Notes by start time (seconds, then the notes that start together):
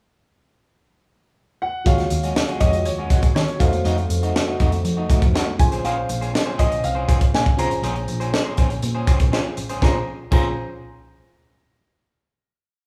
1.62 F#5
1.85 D#2 G#3 C#4 F4 F#4 G#4 C#5 F5, kick, closed hi-hat
1.98 muted clean electric guitar stroke, snare, closed hi-hat
2.10 D#2, muted clean electric guitar stroke, closed hi-hat
2.23 G#3 C#4 F#4, closed hi-hat
2.36 muted clean electric guitar stroke, snare
2.48 G#3 C#4 F#4, closed hi-hat
2.60 F2 G#3 C#4 F#4 D#5, kick, closed hi-hat
2.73 muted clean electric guitar stroke, closed hi-hat
2.78 D#5
2.85 D#2 C#5, muted clean electric guitar stroke, closed hi-hat
2.98 G#3 C#4 F#4
3.10 G#3 C#4 F#4, kick, closed hi-hat
3.22 muted clean electric guitar stroke, kick, closed hi-hat
3.35 D#3 C#5, snare
3.48 muted clean electric guitar stroke, closed hi-hat
3.59 F2 A3 D#4 F#4 A4 C5 F5, kick, closed hi-hat
3.73 E2, muted clean electric guitar stroke, closed hi-hat
3.85 F2 A3 D#4 F#4, closed hi-hat
3.98 muted clean electric guitar stroke, closed hi-hat
4.09 F2, muted clean electric guitar stroke, closed hi-hat
4.23 A3 D#4 F#4, closed hi-hat
4.35 muted clean electric guitar stroke, snare
4.48 A3 D#4 F#4
4.60 F2 A3 D#4 F#4, kick, closed hi-hat
4.72 muted clean electric guitar stroke, closed hi-hat
4.84 F3, muted clean electric guitar stroke, closed hi-hat
4.97 A3 D#4 F#4
5.09 A3 D#4 F#4, kick, closed hi-hat
5.22 F2, muted clean electric guitar stroke, kick, closed hi-hat
5.34 A3 D#4 F#4, snare
5.47 muted clean electric guitar stroke
5.58 A#1 C#4 F4 G#4 C5 G#5, muted clean electric guitar stroke, kick, closed hi-hat
5.72 C#4 G#4 C5, closed hi-hat
5.84 C#4 G#4 C5 F5, closed hi-hat
5.97 muted clean electric guitar stroke
6.09 A#1, muted clean electric guitar stroke, closed hi-hat
6.21 C#4 G#4 C5, closed hi-hat
6.33 muted clean electric guitar stroke, snare
6.46 C#4 G#4 C5
6.58 A#1 C#4 G#4 C5 D#5, kick, closed hi-hat
6.71 muted clean electric guitar stroke, closed hi-hat
6.83 C2 F5, muted clean electric guitar stroke, closed hi-hat
6.95 C#4 G#4 C5
7.08 C#4 G#4 C5, kick, closed hi-hat
7.20 muted clean electric guitar stroke, kick, closed hi-hat
7.34 A#2 G#5, snare
7.45 muted clean electric guitar stroke, kick, closed hi-hat
7.57 C2 C#4 F4 G#4 C5 A#5, closed hi-hat
7.70 A1, muted clean electric guitar stroke, closed hi-hat
7.83 A#1 C#4 G#4 C5, closed hi-hat
7.96 muted clean electric guitar stroke, closed hi-hat
8.08 A#1, muted clean electric guitar stroke, closed hi-hat
8.20 C#4 G#4 C5, closed hi-hat
8.33 muted clean electric guitar stroke, snare
8.45 C#4 G#4 C5
8.57 A#1 C#4 G#4 C5, kick, closed hi-hat
8.70 muted clean electric guitar stroke, closed hi-hat
8.82 A#2, muted clean electric guitar stroke, closed hi-hat
8.95 C#4 G#4 C5
9.07 C#4 G#4 C5, kick, closed hi-hat
9.20 A#1, muted clean electric guitar stroke, kick, closed hi-hat
9.32 C#4 F4 G#4 C5, snare
9.45 muted clean electric guitar stroke
9.57 A1, muted clean electric guitar stroke, closed hi-hat
9.69 C#4 G#4 C5, closed hi-hat
9.82 A#1 C#4 F4 G#4 C5 A#5, kick, snare
10.31 A#1 C#4 F4 G#4 C5 A#5, kick, crash